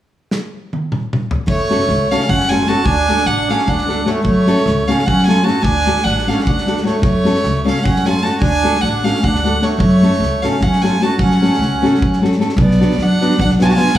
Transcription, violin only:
1.48 2.13 C#5 loud
2.12 2.31 F5 medium
2.29 2.51 F#5 loud
2.49 2.70 G#5 medium
2.68 2.87 A5 medium
2.85 3.28 G#5 loud
3.27 3.52 F#5 loud
3.51 3.71 F5 medium
3.69 4.09 F#5 medium
4.08 4.25 C#5 medium
4.25 4.90 C#5 loud
4.88 5.08 F5 medium
5.06 5.26 F#5 loud
5.27 5.46 G#5 medium
5.44 5.64 A5 medium
5.62 6.06 G#5 loud
6.04 6.30 F#5 loud
6.28 6.44 F5 medium
6.45 6.81 F#5 medium
6.86 7.02 C#5 medium
7.03 7.62 C#5 loud
7.68 7.86 F5 medium
7.84 8.08 F#5 medium
8.06 8.24 G#5 medium
8.23 8.41 A5 medium
8.41 8.83 G#5 loud
8.81 9.06 F#5 medium
9.04 9.26 F5 medium
9.24 9.65 F#5 medium
9.63 9.79 C#5 medium
9.80 10.44 C#5 loud
10.42 10.65 F5 medium
10.63 10.83 F#5 medium
10.82 11.05 G#5 medium
11.03 11.19 A5 medium
11.21 12.19 F#5 medium
12.62 13.04 D5 medium
13.03 13.40 F#5 medium
13.41 13.50 F#5 medium
13.62 13.66 G#5 medium
13.62 13.75 A5 medium
13.74 13.98 G#5 loud

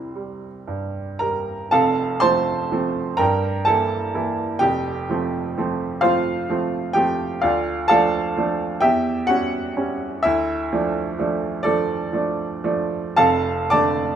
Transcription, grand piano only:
0.00 1.69 C2 medium
0.00 0.16 G3 soft
0.00 0.48 C4 soft
0.16 1.00 G3 soft
0.68 1.53 G2 soft
1.19 1.73 G3 soft
1.19 1.69 A#4 medium
1.19 1.72 A#5 medium
1.71 2.21 F1 medium
1.71 2.22 F2 medium
1.71 2.19 A4 medium
1.71 2.19 F5 medium
1.71 2.20 A5 medium
2.20 2.68 F3 medium
2.20 2.68 A3 medium
2.20 2.68 C4 medium
2.20 3.15 C5 medium
2.20 3.15 A5 medium
2.20 3.18 C6 loud
2.72 3.16 F3 medium
2.72 3.16 A3 soft
2.72 3.16 C4 medium
3.17 3.65 G2 medium
3.17 3.63 A#4 medium
3.17 3.63 G5 medium
3.17 3.66 A#5 loud
3.65 4.10 E3 medium
3.65 4.11 A#3 soft
3.65 4.11 E4 soft
3.65 4.58 A4 medium
3.65 4.61 A5 medium
4.14 4.58 E3 medium
4.14 4.58 A#3 medium
4.14 4.58 E4 medium
4.59 5.08 F1 medium
4.59 5.08 F2 medium
4.59 5.99 G4 medium
4.59 6.03 G5 loud
5.10 5.53 F3 soft
5.10 5.54 A3 medium
5.10 5.54 C4 medium
5.58 6.00 F3 medium
5.58 6.00 A3 soft
5.58 6.01 C4 medium
6.01 6.46 F3 soft
6.01 6.46 A3 soft
6.01 6.46 C4 medium
6.01 6.92 F4 medium
6.01 6.92 C5 medium
6.01 6.95 F5 medium
6.50 6.93 F3 soft
6.50 6.93 A3 soft
6.50 6.93 C4 medium
6.93 7.40 F3 medium
6.93 7.40 A3 medium
6.93 7.40 C4 medium
6.93 7.40 G4 medium
6.93 7.43 G5 loud
7.42 7.89 D2 medium
7.42 7.87 F4 medium
7.42 7.87 D5 medium
7.42 7.88 F5 medium
7.88 8.33 F3 medium
7.88 8.33 A3 medium
7.88 8.33 D4 medium
7.88 8.77 A4 medium
7.88 8.77 F5 medium
7.88 8.81 A5 loud
8.37 8.79 F3 soft
8.37 8.79 A3 medium
8.37 8.79 D4 medium
8.81 9.28 E2 medium
8.81 9.25 G4 medium
8.81 9.25 E5 medium
8.81 9.28 G5 loud
9.27 9.73 G3 soft
9.27 9.73 C#4 medium
9.27 10.20 F#4 medium
9.27 10.24 F#5 loud
9.77 10.21 G3 medium
9.77 10.21 C#4 medium
10.23 10.71 D2 medium
10.23 11.61 E4 medium
10.23 11.65 E5 medium
10.73 11.15 F3 medium
10.73 11.15 A3 medium
10.73 11.15 D4 medium
11.19 11.62 F3 medium
11.19 11.62 A3 medium
11.19 11.62 D4 medium
11.63 12.09 F3 medium
11.63 12.09 A3 medium
11.63 12.12 D4 medium
11.63 12.59 A4 medium
11.63 12.62 D5 medium
12.13 12.60 F3 medium
12.13 12.60 A3 medium
12.13 12.60 D4 medium
12.64 13.14 F3 medium
12.64 13.15 A3 medium
12.64 13.15 D4 medium
13.16 13.70 F1 medium
13.16 13.71 F2 medium
13.16 13.68 A4 medium
13.16 13.68 F5 medium
13.16 13.69 A5 loud
13.70 14.16 D3 medium
13.70 14.16 A3 medium
13.70 14.16 D4 medium
13.70 14.16 D5 medium
13.70 14.16 A5 medium
13.70 14.16 D6 loud

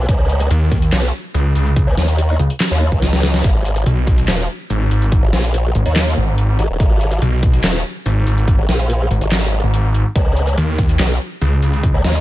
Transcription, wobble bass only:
0.09 0.49 C#2 loud
0.93 1.12 B1 loud
1.87 1.96 C#2 loud
1.97 2.38 D#2 loud
2.71 2.90 D#2 loud
2.92 3.43 C#2 loud
3.44 3.85 G#1 loud
4.28 4.48 D#1 loud
5.23 5.31 G#1 loud
5.33 5.73 A#1 loud
5.86 6.15 D#2 medium
6.59 6.68 G#1 medium
6.70 6.78 D#1 loud
6.80 7.20 G#1 loud
7.64 7.83 D#1 loud
8.58 8.67 G#1 loud
8.69 9.09 A#1 loud
9.21 9.62 G#1 loud
10.16 10.56 C#2 loud
11.00 11.19 B1 loud
11.94 12.03 C#2 loud
12.04 12.21 D#2 loud

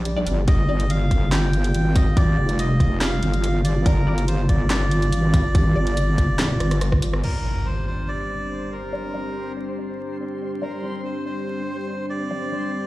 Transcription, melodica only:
0.48 0.91 D#5 loud
0.90 1.29 F5 loud
1.32 1.97 G5 loud
1.95 2.17 D#5 loud
2.16 2.60 D5 loud
2.59 2.98 D#5 loud
3.01 3.60 F5 loud
3.64 3.86 D5 loud
3.86 4.25 A#4 loud
4.28 4.47 C5 loud
4.49 4.68 D5 loud
4.70 6.77 D5 loud
7.24 7.67 A#4 medium
7.66 7.86 C5 medium
7.87 8.09 C5 medium
8.08 8.74 D5 loud
8.72 9.52 A#4 medium
10.62 11.01 A#4 medium
11.05 11.24 C5 medium
11.26 12.06 C5 loud
12.10 12.87 D5 loud

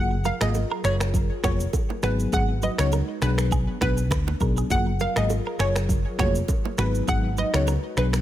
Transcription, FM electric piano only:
0.00 0.15 F#3 medium
0.00 0.15 A#3 medium
0.00 0.15 F4 medium
0.00 0.16 G#4 loud
0.41 0.59 F#3 medium
0.41 0.59 A#3 medium
0.41 0.59 F4 medium
0.41 0.60 G#4 medium
1.43 1.64 F#3 medium
1.43 1.64 A#3 medium
1.43 1.64 F4 medium
1.43 1.64 G#4 medium
2.03 2.30 F#3 medium
2.03 2.30 B3 medium
2.03 2.31 D#4 medium
2.03 2.31 G#4 loud
2.32 2.53 F#3 medium
2.32 2.53 B3 medium
2.32 2.53 D#4 medium
2.32 2.53 G#4 loud
2.78 2.97 F#3 medium
2.78 2.97 B3 medium
2.78 2.97 D#4 medium
2.78 2.97 G#4 medium
3.22 3.77 F#3 medium
3.22 3.77 B3 medium
3.22 3.77 D4 medium
3.22 3.77 G#4 loud
3.81 4.01 F#3 medium
3.81 4.02 B3 medium
3.81 4.02 D4 medium
3.81 4.02 G#4 medium
4.40 4.68 F#3 medium
4.40 4.68 B3 medium
4.40 4.68 D4 medium
4.40 4.68 G#4 medium
4.70 4.91 F#3 medium
4.70 4.91 A#3 medium
4.70 4.91 F4 medium
4.70 4.91 G#4 loud
5.16 5.34 F#3 medium
5.16 5.35 A#3 medium
5.16 5.35 F4 medium
5.16 5.35 G#4 medium
6.18 6.39 F#3 medium
6.18 6.39 A#3 medium
6.18 6.39 F4 medium
6.18 6.39 G#4 medium
6.78 7.06 F#3 medium
6.78 7.06 B3 medium
6.78 7.06 D#4 medium
6.78 7.06 G#4 medium
7.08 7.28 F#3 medium
7.08 7.28 B3 medium
7.08 7.28 D#4 medium
7.08 7.28 G#4 loud
7.54 7.72 F#3 medium
7.54 7.72 B3 medium
7.54 7.72 D#4 medium
7.54 7.72 G#4 medium
7.97 8.21 F#3 medium
7.97 8.21 B3 medium
7.97 8.21 D4 medium
7.97 8.21 G#4 loud

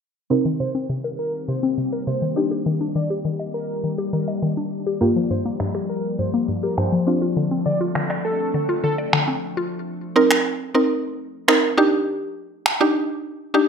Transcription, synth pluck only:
0.30 2.32 C4 medium
0.30 2.33 D#4 medium
0.30 2.33 A#4 medium
2.36 4.68 D4 medium
2.36 4.68 D#4 medium
2.36 4.68 G4 medium
5.01 7.03 A#3 medium
5.01 7.03 F4 medium
5.01 7.03 G4 medium
7.07 9.38 C4 medium
7.07 9.38 D4 medium
7.07 9.39 F4 medium
10.16 10.51 C4 medium
10.16 10.51 D#4 medium
10.16 10.51 A#4 loud
10.74 11.18 C4 medium
10.74 11.18 D#4 medium
10.74 11.19 A#4 medium
11.48 11.78 C4 medium
11.48 11.77 D#4 medium
11.48 11.78 A#4 loud
11.77 12.60 D4 loud
11.77 12.60 D#4 medium
11.77 12.60 G4 loud
12.81 13.24 D4 medium
12.81 13.24 D#4 medium
12.81 13.24 G4 loud
13.54 13.68 D4 medium
13.54 13.68 D#4 medium
13.54 13.68 G4 loud

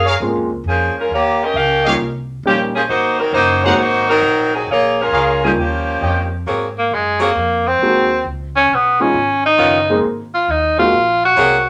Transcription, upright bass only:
0.00 0.19 F#2 medium
0.20 0.35 G#2 medium
0.35 0.49 F2 medium
0.50 0.63 C#2 medium
0.64 0.93 F2 medium
0.94 muted upright bass stroke soft
1.09 1.53 D#2 medium
1.54 1.98 C#2 medium
1.99 2.43 C2 medium
2.43 2.87 A#1 medium
2.88 3.32 G#1 medium
3.33 3.76 F#1 medium
3.77 4.21 G#1 medium
4.22 4.66 A#1 medium
4.67 5.11 A#1 medium
5.11 5.55 C#2 medium
5.56 6.00 D#2 medium
6.01 6.45 F2 medium
6.46 6.90 G#2 medium
6.91 7.34 F#2 medium
7.35 7.79 F2 medium
7.79 8.23 D#2 medium
8.24 8.68 C#2 medium
8.70 9.13 B1 medium
9.14 9.57 G#1 medium
9.58 10.02 F#1 medium
10.03 10.47 G#1 medium
10.48 10.91 D#2 medium
10.93 11.36 A#1 medium
11.37 11.69 C2 medium

